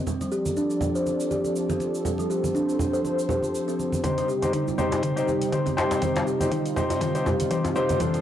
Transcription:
Already playing: C4
0.07 F3 C4 A4 D5, low conga, cabasa
0.21 G3, muted conga, cabasa
0.32 G4, cabasa
0.46 high conga, cabasa
0.57 D4, muted conga, cabasa
0.71 cabasa
0.81 high conga, low conga, cabasa
0.95 C5, cabasa
1.07 muted conga, cabasa
1.20 cabasa
1.31 G4, high conga, cabasa
1.45 muted conga, cabasa
1.56 cabasa
1.70 C4, high conga, cabasa
1.80 muted conga, cabasa
1.95 cabasa
2.05 C4 C5, low conga, cabasa
2.18 G3, muted conga, cabasa
2.30 G4, cabasa
2.44 high conga, cabasa
2.55 D4, muted conga, cabasa
2.70 cabasa
2.79 high conga, low conga, cabasa
2.93 C5, cabasa
3.05 muted conga, cabasa
3.19 cabasa
3.29 G4, low conga, cabasa
3.43 muted conga, high conga, cabasa
3.55 cabasa
3.68 C4, cabasa
3.79 muted conga, cabasa
3.92 high conga, cabasa
4.03 C2 C3 G3 C4 D#4 G4 C5, kick, closed hi-hat, mid tom, low conga, cabasa
4.18 G3, closed hi-hat, muted conga, cabasa
4.28 G4, cabasa
4.42 C4 D#4 G4 C5, closed hi-hat, high conga, cabasa
4.53 D#4, kick, closed hi-hat, mid tom, muted conga, cabasa
4.68 djembe tone, cabasa
4.78 C4 D#4 G4 C5, high conga, low conga, cabasa
4.92 C5, closed hi-hat, djembe tone, cabasa
5.03 kick, closed hi-hat, mid tom, muted conga, cabasa
5.16 C2 C4 D#4 G4 C5, closed hi-hat, cabasa
5.27 G4, high conga, cabasa
5.42 closed hi-hat, muted conga, cabasa
5.52 C4 D#4 G4 C5, kick, closed hi-hat, mid tom, cabasa
5.66 C4, closed hi-hat, high conga, cabasa
5.77 C4 D#4 G4 C5, muted conga, djembe slap, cabasa
5.91 closed hi-hat, djembe slap, djembe tone, cabasa
6.02 C2 C4 D#4 F4 G4 C5, kick, closed hi-hat, mid tom, low conga, cabasa
6.15 G3, closed hi-hat, muted conga, djembe slap, cabasa
6.27 G4, cabasa
6.40 C4 D#4 G4 C5, closed hi-hat, high conga, cabasa
6.52 D#4, kick, closed hi-hat, mid tom, muted conga, cabasa
6.66 closed hi-hat, cabasa
6.76 C4 D#4 G4 C5, kick, high conga, low conga, cabasa
6.90 C5, closed hi-hat, djembe tone, cabasa
7.01 kick, closed hi-hat, mid tom, muted conga, djembe tone, cabasa
7.15 C4 D#4 G4 C5, closed hi-hat, cabasa
7.26 G4, djembe tone, low conga, cabasa
7.40 closed hi-hat, muted conga, high conga, cabasa
7.51 C4 D#4 G4 C5, kick, closed hi-hat, mid tom, cabasa
7.65 C4, closed hi-hat, djembe tone, cabasa
7.76 C4 D#4 G4 C5, muted conga, cabasa
7.89 closed hi-hat, high conga, cabasa
8.00 A3 C4 D4 F4 A4 C5, kick, closed hi-hat, mid tom, low conga, cabasa
8.14 G3, closed hi-hat, muted conga, cabasa

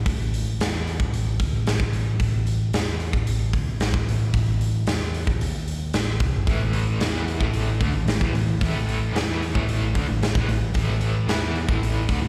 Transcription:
0.05 A1, kick, open hi-hat
0.34 open hi-hat
0.59 E2, snare, open hi-hat
0.87 open hi-hat
0.99 A1, kick
1.14 open hi-hat
1.40 D2, kick, open hi-hat
1.53 A1
1.67 A1, snare, open hi-hat
1.79 A1, kick
1.93 A1, open hi-hat
2.20 A1, kick, open hi-hat
2.47 open hi-hat
2.73 E2, snare, open hi-hat
3.00 open hi-hat
3.13 A1, kick
3.27 open hi-hat
3.53 D2, kick, open hi-hat
3.67 A1
3.80 A1, snare, open hi-hat
3.94 A1, kick
4.09 A1, open hi-hat
4.34 A1, kick, open hi-hat
4.61 open hi-hat
4.87 E2, snare, open hi-hat
5.14 open hi-hat
5.27 A1, kick
5.41 D#2, open hi-hat
5.68 open hi-hat
5.93 A1, snare, open hi-hat
6.20 C2, kick, open hi-hat
6.34 G1
6.47 A1 A2 E3 A3, kick, open hi-hat
6.73 open hi-hat
7.00 E2 E3 B3 E4, snare, open hi-hat
7.28 open hi-hat
7.40 A1 A2 E3 A3, kick
7.53 open hi-hat
7.80 D2 D3 A3, kick, open hi-hat
7.94 A1 A2 E3
8.06 A1 A2 E3, snare, open hi-hat
8.21 A1 A2 E3, kick
8.33 A1 A2 E3, open hi-hat
8.61 A1 A2 E3 A3, kick, open hi-hat
8.89 open hi-hat
9.13 E2 E3 B3 E4, snare, open hi-hat
9.42 open hi-hat
9.55 A1 A2 E3 A3, kick
9.69 open hi-hat
9.95 D2 D3 A3, kick, open hi-hat
10.08 A1 A2 E3
10.21 A1 A2 E3, snare, open hi-hat
10.35 A1 A2 E3, kick
10.48 A1 A2 E3, open hi-hat
10.74 A1 A2 E3 A3, kick, open hi-hat
11.01 open hi-hat
11.28 E2 E3 B3 E4, snare, open hi-hat
11.55 open hi-hat
11.69 A1 A2 E3 A3, kick
11.83 open hi-hat
12.08 D2 D3 A3, kick, open hi-hat
12.21 A1 A2 E3

